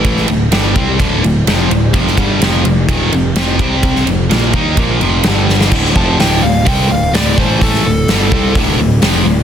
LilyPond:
<<
  \new Staff \with { instrumentName = "Lead electric guitar" } { \time 4/4 \key d \phrygian \tempo 4 = 127 r1 | r1 | r1 | r8 a''8 g''8 f''8 g''8 f''8 d''8 c''8 |
a'2 r2 | }
  \new Staff \with { instrumentName = "Distorted electric guitar" } { \clef bass \time 4/4 \key d \phrygian <a, e a>8 <d, a,>8 <g, d g>8 <c g c'>8 <d, a, d>8 <d, a,>8 <f, c f>8 <d, a,>8 | <f, c f>8 <g, d g>8 <f, c f>8 <f, c>8 <ees, bes, ees>8 <f, c>8 <f, c f>8 <c g c'>8~ | <c g c'>8 <f, c>8 <bes, f bes>8 <ees bes ees'>8 <bes, f bes>8 <f, c f>8 <g, d g>4 | <d, a, d>8 <f, c f>8 <d, a, d>8 <d, a,>8 <c g c'>8 <d, a,>8 <d, a, d>8 <a, e a>8~ |
<a, e a>8 <d, a,>8 <g, d g>8 <c g c'>8 <d, a, d>8 <d, a,>8 <f, c f>8 <d, a,>8 | }
  \new Staff \with { instrumentName = "Picked electric bass" } { \clef bass \time 4/4 \key d \phrygian a,,8 d,,8 g,,8 c,8 d,,8 d,,8 f,,8 d,,8 | f,,8 g,,8 f,,8 f,,8 r8 f,,8 f,,8 c,8~ | c,8 f,,8 bes,,8 ees,8 bes,,8 f,,8 g,,4 | d,,8 f,,8 d,,8 d,,8 c,8 d,,8 d,,8 a,,8~ |
a,,8 d,,8 g,,8 c,8 d,,8 d,,8 f,,8 d,,8 | }
  \new DrumStaff \with { instrumentName = "Drums" } \drummode { \time 4/4 <bd cymr>16 sn16 cymr8 <cymr sn>8 <bd cymr>8 <bd cymr>8 cymr8 <cymr sn>8 cymr8 | <bd cymr>16 sn16 <bd cymr>8 <cymr sn>8 cymr8 <bd cymr>8 cymr8 <cymr sn>8 <bd cymr>8 | <bd cymr>16 sn16 cymr8 <cymr sn>8 <bd cymr>8 <bd cymr>8 cymr8 <cymr sn>8 sn16 sn16 | <cymc bd>16 sn16 bd8 <hho sn>4 <hho bd>4 <hho sn>8 bd8 |
<hho bd>16 sn8. <hho sn>8 bd8 <hho bd>4 <hho sn>4 | }
>>